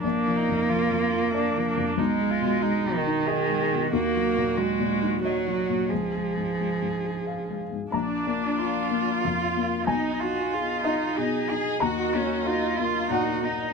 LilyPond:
<<
  \new Staff \with { instrumentName = "Viola" } { \time 3/4 \key ees \minor \tempo 4 = 92 d'8 ees'8 f'8 f'8 d'8 d'8 | ees'8 f'8 ees'4 aes'4 | ges'2 ges'4 | aes'2~ aes'8 r8 |
d'2 f'4 | ees'8 ges'8 f'8 ees'8 aes'4 | ges'4 f'4 ees'8 ees'8 | }
  \new Staff \with { instrumentName = "Cello" } { \time 3/4 \key ees \minor bes2. | aes4. ees4. | bes4 aes4 ges4 | f2~ f8 r8 |
d'4 f'2 | ees'8 f'4. ees'8 aes'8 | ges'8 des'8 ees'8 f'8 ges'8 ees'8 | }
  \new Staff \with { instrumentName = "String section" } { \time 3/4 \key ees \minor << { r2. | r2. | r2. | r2. |
d''2. | ees''2.~ | ees''2. | } \\ { r2. | r2. | r2. | r2. |
<bes f'>2. | <ces' ees'>2. | <ges bes>2. | } >> }
  \new Staff \with { instrumentName = "Upright piano" } { \time 3/4 \key ees \minor r2. | r2. | r2. | r2. |
bes''2. | aes''4. ees''4. | bes''2 ges''4 | }
  \new Staff \with { instrumentName = "Upright piano" } { \clef bass \time 3/4 \key ees \minor \tuplet 3/2 { bes,,8 f8 f,8 f8 f,8 f'8 d''8 f8 f,8 } | \tuplet 3/2 { ces,8 aes8 ces8 aes8 ces8 ees'8 ees''8 aes8 ces8 } | \tuplet 3/2 { ees,8 ges8 bes,8 ges8 bes,8 ees'8 ees''8 ges8 bes,8 } | \tuplet 3/2 { des,8 aes8 aes,8 aes8 aes,8 aes'8 f''8 aes8 aes,8 } |
bes,,8 bes8 f'8 bes8 f,8 bes8 | ces,8 ees'8 aes'8 ees'8 ces8 ees'8 | ees,8 bes8 ges'8 bes8 bes,8 bes8 | }
>>